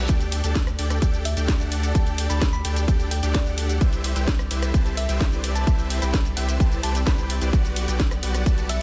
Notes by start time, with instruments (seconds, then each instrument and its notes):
Already playing: analog synth pad A4
0.09 sub bass D2, supersaw synth D4 G4 A4 D5 G5, analog synth pad G4 D5, kick, closed hi-hat, ride, shaker
0.21 closed hi-hat, shaker
0.32 open hi-hat, ride
0.44 sub bass D2, supersaw synth D4 G4 A4 D5 A5, closed hi-hat, shaker
0.55 kick, snare, closed hi-hat, ride, shaker
0.67 cross-stick, closed hi-hat, shaker
0.79 sub bass D2, supersaw synth D4 G4 A4 D5 G5, open hi-hat, ride
0.90 cross-stick, closed hi-hat, shaker
1.02 sub bass D2, supersaw synth D4 G4 A4 D5 G5, kick, closed hi-hat, ride, shaker
1.14 closed hi-hat, shaker
1.25 synth pluck E5, open hi-hat, ride
1.37 sub bass D2, supersaw synth D4 G4 A4 D5 G5, closed hi-hat, shaker
1.48 kick, snare, closed hi-hat, ride, shaker
1.60 sub bass D2, supersaw synth D4 G4 A4 D5 F#5, closed hi-hat, shaker
1.72 open hi-hat, ride
1.83 synth pluck A5, closed hi-hat, shaker
1.95 sub bass D2, supersaw synth D4 G4 G5, analog synth pad A4, kick, closed hi-hat, ride, shaker
2.07 closed hi-hat, shaker
2.18 open hi-hat, ride
2.30 sub bass D2, supersaw synth D4 G4 A4 D5 A5, synth pluck B5, open hi-hat, shaker
2.41 kick, snare, closed hi-hat, ride, shaker
2.53 synth pluck B5, closed hi-hat, shaker
2.65 sub bass D2, supersaw synth D4 G4 A4 D5 G5, open hi-hat, ride
2.76 closed hi-hat, shaker
2.88 sub bass D2, supersaw synth D4 G4 A4 D5 G5, kick, closed hi-hat, ride, shaker
3.00 closed hi-hat, shaker
3.11 synth pluck G5, open hi-hat, ride
3.23 sub bass D2, supersaw synth D4 G4 A4 D5 G5, closed hi-hat, shaker
3.35 synth pluck D5, kick, snare, closed hi-hat, ride, shaker
3.46 sub bass D2, supersaw synth D4 G4 A4 D5 F#5, closed hi-hat, shaker
3.58 open hi-hat, ride
3.69 closed hi-hat, shaker
3.81 sub bass C2, analog synth pad C4 E5, supersaw synth E4 G4 B4 C5 E5, kick, closed hi-hat, ride, shaker
3.93 closed hi-hat, shaker
4.04 open hi-hat, ride
4.16 sub bass C2, supersaw synth E4 G4 B4 C5 G5, closed hi-hat, shaker
4.28 kick, snare, closed hi-hat, ride, shaker
4.39 cross-stick, closed hi-hat, shaker
4.51 sub bass C2, supersaw synth E4 G4 B4 C5 E5, open hi-hat, ride
4.62 cross-stick, closed hi-hat, shaker
4.74 sub bass C2, supersaw synth E4 G4 A5, kick, closed hi-hat, ride, shaker
4.86 closed hi-hat, shaker
4.97 synth pluck E5, open hi-hat, ride
5.09 sub bass C2, supersaw synth E4 G4 B4 C5 E5, closed hi-hat, shaker
5.21 kick, snare, closed hi-hat, ride, shaker
5.32 sub bass C2, supersaw synth E4 G4 B4 C5 D5, closed hi-hat, shaker
5.44 open hi-hat, ride
5.55 synth pluck A5, closed hi-hat, shaker
5.67 sub bass C2, supersaw synth E4 G4 B4 C5 E5, kick, closed hi-hat, ride, shaker
5.79 closed hi-hat, shaker
5.90 open hi-hat, ride
6.02 sub bass C2, supersaw synth E4 G4 B4 C5 G5, synth pluck B5, open hi-hat, shaker
6.14 kick, snare, closed hi-hat, ride, shaker
6.25 closed hi-hat, shaker
6.37 sub bass C2, supersaw synth E4 G4 B4 C5 E5, synth pluck G5, open hi-hat, ride
6.49 closed hi-hat, shaker
6.60 sub bass C2, supersaw synth E4 G4 B4 C5 A5, kick, closed hi-hat, ride, shaker
6.72 closed hi-hat, shaker
6.83 sub bass C2, supersaw synth E4 G4 B4 C5 G5, synth pluck A5, open hi-hat, ride
6.95 closed hi-hat, shaker
7.07 sub bass C2, supersaw synth E4 G4 B4 C5 D5, synth pluck B5, kick, snare, closed hi-hat, ride, shaker
7.18 sub bass C2, supersaw synth E4 G4 B4 C5 G5, closed hi-hat, shaker
7.30 open hi-hat, ride
7.41 sub bass C2, supersaw synth E4 G4 B4 C5 D5, closed hi-hat, shaker
7.53 sub bass B1, analog synth pad G3 B3 A4 F#5, supersaw synth F#4 G4 F#5, kick, closed hi-hat, ride, shaker
7.65 closed hi-hat, shaker
7.76 open hi-hat, ride
7.88 sub bass B1, supersaw synth F#4 G4 B4 D5 G5, closed hi-hat, shaker
8.00 kick, snare, closed hi-hat, ride, shaker
8.11 cross-stick, closed hi-hat, shaker
8.23 sub bass B1, supersaw synth F#4 G4 B4 D5 F#5, open hi-hat, ride
8.35 cross-stick, closed hi-hat, shaker
8.46 sub bass B1, supersaw synth F#4 G4 B4 D5 A5, kick, closed hi-hat, ride, shaker
8.58 closed hi-hat, shaker
8.69 synth pluck E5, open hi-hat, ride